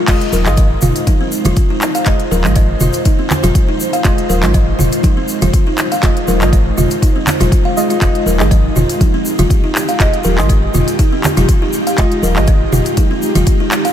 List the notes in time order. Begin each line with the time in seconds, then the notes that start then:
0.08 F1 G#3 D#4 F4 C5 D#5, kick, clap, closed hi-hat, crash, shaker
0.21 closed hi-hat
0.32 D#1 A#4, high conga, shaker
0.46 G#1 G#3 F4 D#5, clap, high conga, shaker
0.57 D#5, kick, closed hi-hat, high conga, shaker
0.82 F1 F4, mid tom, low conga, shaker
0.96 closed hi-hat, shaker
1.07 D#4, kick, closed hi-hat, high conga, shaker
1.21 C4
1.32 shaker
1.45 F1 F4, closed hi-hat, high conga, low conga, shaker
1.56 kick, closed hi-hat, shaker
1.70 D#4
1.81 clap, shaker
1.95 F5, closed hi-hat, shaker
2.06 F1 G#3 F4 D#5, kick, clap, closed hi-hat, shaker
2.19 closed hi-hat
2.31 D#1 A#4, high conga, shaker
2.44 G#1 G#3 F4 D#5, clap, high conga, shaker
2.56 D#5, kick, closed hi-hat, high conga, shaker
2.80 F1 F4, mid tom, low conga, shaker
2.93 closed hi-hat, shaker
3.05 D#4, kick, closed hi-hat, shaker
3.19 C4
3.30 clap, low conga, shaker
3.43 F1 F4, closed hi-hat, mid tom, high conga, shaker
3.55 kick, closed hi-hat, shaker
3.69 D#4
3.80 shaker
3.93 F5, closed hi-hat, shaker
4.04 F1 G#3 F4 D#5, kick, clap, closed hi-hat, shaker
4.18 closed hi-hat
4.29 D#1 A#4, high conga, shaker
4.43 G#1 G#3 F4 D#5, clap, high conga, shaker
4.54 D#5, kick, closed hi-hat, high conga, shaker
4.79 F1 F4, mid tom, low conga, shaker
4.92 closed hi-hat, shaker
5.03 D#4, kick, closed hi-hat, high conga, shaker
5.17 C4
5.28 shaker
5.42 F1 F4, closed hi-hat, high conga, low conga, shaker
5.53 kick, closed hi-hat, shaker
5.67 D#4
5.78 clap, shaker
5.92 F5, closed hi-hat, shaker
6.03 F1 G#3 F4 D#5, kick, clap, closed hi-hat, shaker
6.17 closed hi-hat
6.28 D#1 A#4, high conga, shaker
6.41 G#1 G#3 F4 D#5, clap, high conga, shaker
6.53 D#5, kick, closed hi-hat, high conga, shaker
6.78 F1 F4, mid tom, low conga, shaker
6.91 closed hi-hat, shaker
7.02 D#4, kick, closed hi-hat, shaker
7.16 C4
7.27 clap, low conga, shaker
7.40 F1 F4, closed hi-hat, mid tom, high conga, shaker
7.52 kick, closed hi-hat, shaker
7.65 F5
7.77 G#3 F4 D#5, shaker
7.90 F4, closed hi-hat, shaker
8.01 F1 G#3 F4 G4 D#5, kick, clap, closed hi-hat, shaker
8.15 closed hi-hat
8.26 D#1 A#4, high conga, shaker
8.40 G#1 G#3 F4 D#5, clap, high conga, shaker
8.51 D#5, kick, closed hi-hat, high conga, shaker
8.76 F1 F4, mid tom, low conga, shaker
8.89 closed hi-hat, shaker
9.01 D#4, kick, closed hi-hat, high conga, shaker
9.14 C4
9.25 shaker
9.38 F1 F4, closed hi-hat, high conga, low conga, shaker
9.50 kick, closed hi-hat, shaker
9.64 D#4
9.75 clap, shaker
9.88 F5, closed hi-hat, shaker
10.00 F1 G#3 F4 D#5, kick, clap, closed hi-hat, shaker
10.13 closed hi-hat
10.24 D#1 A#4, high conga, shaker
10.38 G#1 G#3 F4 D#5, clap, high conga, shaker
10.49 D#5, kick, closed hi-hat, high conga, shaker
10.74 F1 F4, mid tom, low conga, shaker
10.88 closed hi-hat, shaker
10.99 D#4, kick, closed hi-hat, shaker
11.12 C4
11.24 clap, low conga, shaker
11.37 F1 F4, closed hi-hat, mid tom, high conga, shaker
11.49 kick, closed hi-hat, shaker
11.62 D#4
11.73 shaker
11.87 F5, closed hi-hat, shaker
11.98 F1 G#3 F4 D#5, kick, clap, closed hi-hat, shaker
12.12 closed hi-hat
12.22 D#1 A#4, high conga, shaker
12.36 G#1 G#3 F4 D#5, clap, high conga, shaker
12.47 D#5, kick, closed hi-hat, high conga, shaker
12.72 F1 F4, mid tom, low conga, shaker
12.86 closed hi-hat, shaker
12.97 D#4, kick, closed hi-hat, high conga, shaker
13.11 C4
13.22 shaker
13.35 F1 F4, closed hi-hat, high conga, low conga, shaker
13.47 kick, closed hi-hat, shaker
13.60 D#4
13.71 clap, shaker
13.85 F5, closed hi-hat, shaker